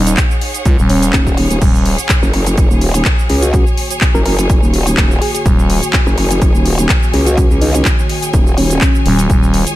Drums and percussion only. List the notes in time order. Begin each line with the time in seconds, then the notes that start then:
0.07 closed hi-hat, cabasa
0.17 kick, clap, closed hi-hat, cabasa
0.31 cabasa
0.41 open hi-hat
0.54 closed hi-hat, cabasa
0.65 kick, closed hi-hat, cabasa
0.79 cabasa
0.89 open hi-hat
1.02 closed hi-hat, cabasa
1.13 kick, clap, closed hi-hat, cabasa
1.27 kick, cabasa
1.38 open hi-hat
1.51 closed hi-hat, cabasa
1.62 kick, closed hi-hat, crash, cabasa
1.75 cabasa
1.85 open hi-hat
1.98 closed hi-hat, cabasa
2.09 kick, clap, closed hi-hat, cabasa
2.23 cabasa
2.33 open hi-hat
2.46 closed hi-hat, cabasa
2.57 kick, closed hi-hat, cabasa
2.71 cabasa
2.81 open hi-hat
2.94 closed hi-hat, cabasa
3.05 kick, clap, closed hi-hat, cabasa
3.19 cabasa
3.30 open hi-hat
3.42 closed hi-hat, cabasa
3.54 kick, closed hi-hat, cabasa
3.67 cabasa
3.77 open hi-hat
3.91 closed hi-hat, cabasa
4.01 kick, clap, closed hi-hat, cabasa
4.15 cabasa
4.26 open hi-hat
4.39 closed hi-hat, cabasa
4.50 kick, closed hi-hat, cabasa
4.63 cabasa
4.74 open hi-hat
4.87 closed hi-hat, cabasa
4.97 kick, clap, closed hi-hat, cabasa
5.11 cabasa
5.22 open hi-hat
5.35 closed hi-hat, cabasa
5.46 kick, closed hi-hat, cabasa
5.59 cabasa
5.70 open hi-hat
5.83 closed hi-hat, cabasa
5.93 kick, clap, closed hi-hat, cabasa
6.07 cabasa
6.18 open hi-hat
6.31 closed hi-hat, cabasa
6.42 kick, closed hi-hat, cabasa
6.55 cabasa
6.66 open hi-hat
6.78 closed hi-hat, cabasa
6.89 kick, clap, closed hi-hat, cabasa
7.03 cabasa
7.14 open hi-hat
7.26 closed hi-hat, cabasa
7.38 kick, closed hi-hat, cabasa
7.51 cabasa
7.62 open hi-hat
7.75 closed hi-hat, cabasa
7.85 kick, clap, closed hi-hat, cabasa
7.99 cabasa
8.09 open hi-hat
8.23 closed hi-hat, cabasa
8.33 kick, closed hi-hat, cabasa
8.47 cabasa
8.58 open hi-hat
8.70 closed hi-hat, cabasa
8.81 kick, clap, closed hi-hat, cabasa
8.95 cabasa
9.06 open hi-hat
9.19 closed hi-hat, cabasa
9.30 kick, closed hi-hat, cabasa
9.43 cabasa
9.54 open hi-hat
9.67 closed hi-hat, cabasa